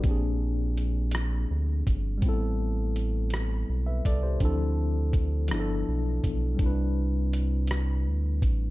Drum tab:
HH |x-xx-x|x-xx-x|x-xx-x|x-xx-x|
SD |---r--|---r--|---r--|---r--|
BD |o----o|o----o|o-o--o|o----o|